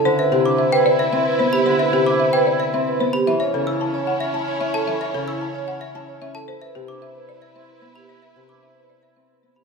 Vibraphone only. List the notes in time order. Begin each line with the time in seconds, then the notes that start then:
0.19 B4
0.46 D4
0.73 B4
0.99 C5
1.26 B4
1.53 G4
1.79 B4
2.06 D4
2.33 B4
2.60 C5
2.87 B4
3.14 G4
3.40 C#5
3.67 E4
3.94 C#5
4.21 E5
4.47 C#5
4.74 A4
5.01 C#5
5.27 E4
5.54 C#5
5.81 E5
6.08 C#5
6.35 A4
6.61 B4
6.88 D4
7.15 B4
7.42 C5
7.69 B4
7.96 G4
8.49 D4
8.76 B4
9.02 C5
9.29 B4
9.56 G4